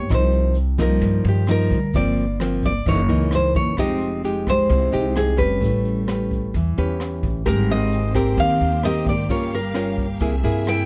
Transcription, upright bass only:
Already playing: G2
0.10 C2
1.02 G2
1.25 G2
1.71 D2
1.94 G1
2.86 F#1
3.09 C#2
3.55 F#1
3.78 F1
4.70 C2
4.93 C2
5.39 F1
5.62 A1
6.54 E2
6.78 E2
7.23 A1
7.46 G#1
8.38 D#2
8.61 D#2
9.07 G#1
9.29 G1
10.21 C2
10.43 G2

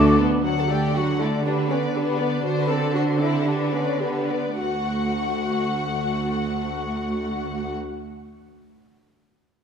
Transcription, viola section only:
Already playing: A3
0.19 B3
0.45 F#3 F#4
0.70 A3 A4
0.96 F#3 F#4
1.21 A3 A4
1.46 D4 G4
1.71 B3 B4
1.95 D4 G4
2.19 B3 B4
2.44 D4 F#4
2.68 C4 A4
2.93 D4 F#4
3.19 C4 A4
3.46 D4 G4
3.73 B3 B4
4.02 D4 G4
4.31 B3 B4
4.60 A3 F#4

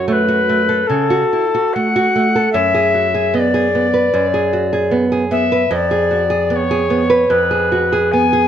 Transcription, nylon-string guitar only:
Already playing: F#2 F#4
0.08 A3
0.28 F#4
0.49 A3
0.69 A4
0.90 C#3
1.10 F#4
1.33 E4
1.55 F#4
1.76 A3
1.96 F#4
2.16 A3
2.35 A4
2.54 F#2
2.74 G#4
2.94 F#4
3.14 G#4
3.34 B3
3.54 G#4
3.75 B3
3.94 B4
4.14 F#2
4.34 G#4
4.53 F#4
4.73 G#4
4.91 B3
5.12 G#4
5.31 B3
5.52 B4
5.71 F2
5.91 G#4
6.11 F#4
6.30 G#4
6.50 B3
6.71 G#4
6.90 B3
7.10 B4
7.30 F2
7.51 G#4
7.72 F#4
7.92 G#4
8.13 B3
8.33 G#4

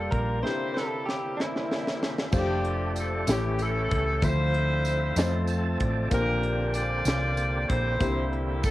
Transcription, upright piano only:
Already playing: G2 A#3 F4 G4 D5 A5
0.41 C3 A#3 D4 E4 G4 B4
0.51 C5
2.32 A3 D4 F4 G4 C5
3.27 A2 A3 C#4 E4 G4 C#5
4.22 D3 F3 A3 D4 C5 E5
5.16 F3 A3 C4 C5 D#5
6.10 A#2 F3 A#3 D4 G4 C5
7.98 C3 A#3 D4 E4 G4 C5

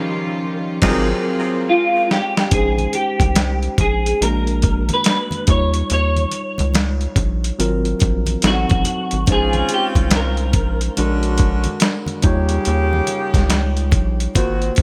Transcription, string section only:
Already playing: D#3 G3 C#4 F4
0.81 F#3 A#3 C4 F4
1.66 G#3 C#4

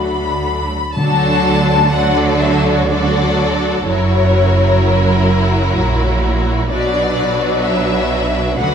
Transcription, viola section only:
Already playing: F#3 D4
0.95 F#3 D4
1.94 F#3 D4
2.91 F#3 D4
3.87 F#3 E4
6.71 F#3 D4
8.59 F#3 D4

